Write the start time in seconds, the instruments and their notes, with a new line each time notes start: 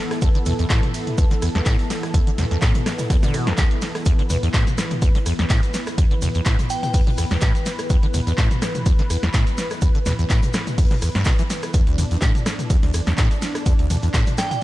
Already playing: analog synth pad E3 B3 A4
0.11 cross-stick, snare, closed hi-hat
0.22 acid bass E2, kick, closed hi-hat, ride, shaker
0.35 acid bass D3, closed hi-hat
0.46 acid bass E2, open hi-hat, mid tom, ride, shaker
0.59 acid bass E2, snare, closed hi-hat
0.70 acid bass A2, kick, snare, clap, closed hi-hat, ride, shaker
0.83 closed hi-hat, mid tom
0.94 open hi-hat, ride, shaker
1.07 closed hi-hat, mid tom
1.18 acid bass E2, kick, closed hi-hat, ride, shaker
1.31 acid bass D3, snare, closed hi-hat
1.42 acid bass E2, cross-stick, open hi-hat, ride, shaker
1.55 acid bass E2, snare, closed hi-hat
1.66 acid bass A2, kick, snare, clap, closed hi-hat, ride, shaker
1.79 snare, closed hi-hat
1.90 snare, open hi-hat, ride, shaker
2.03 cross-stick, snare, closed hi-hat
2.14 acid bass E2, kick, closed hi-hat, ride, shaker
2.27 acid bass D3, closed hi-hat
2.38 acid bass E2, snare, open hi-hat, mid tom, ride, shaker
2.51 acid bass E2, snare, closed hi-hat
2.62 acid bass A2, kick, snare, clap, closed hi-hat, ride, shaker
2.75 closed hi-hat, mid tom
2.86 cross-stick, snare, open hi-hat, ride, shaker
2.98 snare, closed hi-hat, mid tom, shaker
3.10 acid bass E2, kick, snare, closed hi-hat, ride, shaker
3.23 acid bass D3, snare, closed hi-hat, mid tom, shaker
3.34 acid bass B2, cross-stick, open hi-hat, ride, shaker
3.47 acid bass E2, snare, closed hi-hat
3.58 acid bass E2, kick, snare, clap, closed hi-hat, ride, shaker
3.71 closed hi-hat
3.81 snare, open hi-hat, ride, shaker
3.95 cross-stick, snare, closed hi-hat
4.05 acid bass E2, analog synth pad B4, kick, closed hi-hat, ride, shaker, maracas
4.19 acid bass D3, closed hi-hat
4.30 acid bass E2, open hi-hat, mid tom, ride, maracas, shaker
4.43 acid bass E2, snare, closed hi-hat, maracas
4.54 acid bass A2, kick, snare, clap, closed hi-hat, ride, shaker, maracas
4.67 closed hi-hat, mid tom, maracas
4.78 cross-stick, snare, open hi-hat, ride, shaker, maracas
4.91 closed hi-hat, mid tom, maracas
5.02 acid bass E2, kick, closed hi-hat, ride, shaker, maracas
5.15 acid bass D3, snare, closed hi-hat
5.26 acid bass E2, cross-stick, open hi-hat, ride, shaker, maracas
5.39 acid bass E2, snare, closed hi-hat, maracas
5.50 acid bass A2, kick, snare, clap, closed hi-hat, ride, shaker, maracas
5.63 snare, closed hi-hat, maracas
5.74 snare, open hi-hat, ride, maracas, shaker
5.86 cross-stick, snare, closed hi-hat, maracas
5.98 acid bass E2, kick, closed hi-hat, ride, maracas, shaker
6.11 acid bass D3, closed hi-hat
6.21 acid bass E2, open hi-hat, mid tom, ride, shaker, maracas
6.34 acid bass E2, closed hi-hat, maracas
6.45 acid bass A2, kick, snare, clap, closed hi-hat, ride, maracas, shaker
6.59 closed hi-hat, mid tom, maracas
6.70 synth bell G5, open hi-hat, ride, maracas, shaker
6.83 synth bell G5, snare, closed hi-hat, mid tom, maracas
6.93 acid bass E2, kick, closed hi-hat, open hi-hat, ride, maracas
7.07 acid bass D3, closed hi-hat, mid tom
7.18 acid bass E2, cross-stick, open hi-hat, ride, maracas, shaker
7.31 acid bass E2, snare, closed hi-hat, maracas
7.41 acid bass A2, kick, snare, clap, closed hi-hat, ride, shaker, maracas
7.55 closed hi-hat, maracas
7.65 snare, open hi-hat, ride, shaker, maracas
7.78 cross-stick, snare, closed hi-hat, maracas
7.90 acid bass E2, kick, closed hi-hat, ride, shaker, maracas
8.03 acid bass D3, closed hi-hat
8.14 acid bass E2, open hi-hat, mid tom, ride, maracas, shaker
8.27 acid bass E2, snare, closed hi-hat, maracas
8.38 acid bass A2, kick, snare, clap, closed hi-hat, ride, maracas, shaker
8.51 closed hi-hat, mid tom, maracas
8.62 cross-stick, snare, open hi-hat, ride, shaker, maracas
8.75 closed hi-hat, mid tom, maracas
8.86 acid bass E2, kick, closed hi-hat, ride, maracas, shaker
8.99 acid bass D3, snare, closed hi-hat
9.10 acid bass E2, cross-stick, open hi-hat, ride, shaker, maracas
9.23 acid bass E2, snare, closed hi-hat, maracas
9.34 acid bass A2, kick, snare, clap, closed hi-hat, ride, shaker, maracas
9.47 snare, closed hi-hat, maracas
9.58 snare, open hi-hat, ride, maracas, shaker
9.70 cross-stick, snare, closed hi-hat, maracas
9.82 acid bass E2, kick, closed hi-hat, ride, shaker, maracas
9.95 acid bass D3, closed hi-hat
10.06 acid bass E2, snare, open hi-hat, mid tom, ride, maracas, shaker
10.19 acid bass E2, closed hi-hat, maracas
10.30 acid bass A2, kick, snare, clap, closed hi-hat, ride, maracas, shaker
10.43 closed hi-hat, mid tom, maracas
10.53 cross-stick, snare, open hi-hat, ride, maracas, shaker
10.67 snare, closed hi-hat, mid tom, maracas
10.78 acid bass E2, kick, closed hi-hat, open hi-hat, ride, maracas
10.91 acid bass D3, snare, closed hi-hat, mid tom
11.01 acid bass E2, cross-stick, open hi-hat, ride, shaker, maracas
11.15 acid bass G2, snare, closed hi-hat, maracas
11.25 acid bass B2, kick, snare, clap, closed hi-hat, ride, shaker, maracas
11.38 acid bass E3, closed hi-hat, maracas
11.50 snare, open hi-hat, ride, shaker, maracas
11.63 cross-stick, snare, closed hi-hat, maracas
11.74 acid bass E2, analog synth pad D4, kick, closed hi-hat, ride, shaker, maracas
11.87 acid bass D2, closed hi-hat
11.98 acid bass E2, open hi-hat, mid tom, ride, shaker, maracas
12.11 acid bass E2, snare, closed hi-hat, maracas
12.21 acid bass A2, kick, snare, clap, closed hi-hat, ride, shaker, maracas
12.35 closed hi-hat, mid tom, maracas
12.46 cross-stick, snare, open hi-hat, ride, maracas, shaker
12.59 closed hi-hat, mid tom, maracas
12.70 acid bass E2, kick, closed hi-hat, ride, maracas, shaker
12.83 acid bass D2, snare, closed hi-hat
12.93 acid bass E2, cross-stick, open hi-hat, ride, shaker, maracas
13.07 acid bass E2, snare, closed hi-hat, maracas
13.18 acid bass A2, kick, snare, clap, closed hi-hat, ride, shaker, maracas
13.31 snare, closed hi-hat, maracas
13.42 snare, open hi-hat, ride, shaker, maracas
13.54 cross-stick, snare, closed hi-hat, maracas
13.66 acid bass E2, kick, closed hi-hat, ride, shaker, maracas
13.79 acid bass D2, closed hi-hat
13.90 acid bass E2, open hi-hat, mid tom, ride, maracas, shaker
14.02 acid bass E2, closed hi-hat, maracas
14.14 acid bass A2, kick, snare, clap, closed hi-hat, ride, maracas, shaker
14.26 closed hi-hat, mid tom, maracas
14.38 synth bell G5, cross-stick, snare, open hi-hat, ride, maracas, shaker
14.51 synth bell G5, snare, closed hi-hat, mid tom, maracas